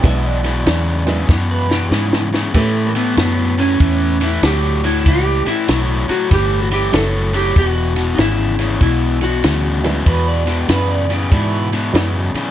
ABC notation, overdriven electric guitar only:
X:1
M:4/4
L:1/8
Q:"Swing" 1/4=96
K:A
V:1 name="Overdriven electric guitar" clef=bass
[E,,B,,] [E,,B,,] [E,,C,] [E,,C,] [E,,B,,] [E,,B,,] [E,,C,] [E,,C,] | [A,,E,] [A,,E,] [A,,F,] [A,,F,] [A,,E,] [A,,E,] [A,,F,] [A,,F,] | [A,,E,] [A,,E,] [A,,F,] [A,,F,] [A,,E,] [A,,E,] [A,,F,] [A,,F,] | [E,,B,,] [E,,B,,] [E,,C,] [E,,C,] [E,,B,,] [E,,B,,] [E,,C,] [E,,C,] |
[E,,B,,] [E,,B,,] [E,,C,] [E,,C,] [E,,B,,] [E,,B,,] [E,,C,] [E,,C,] |]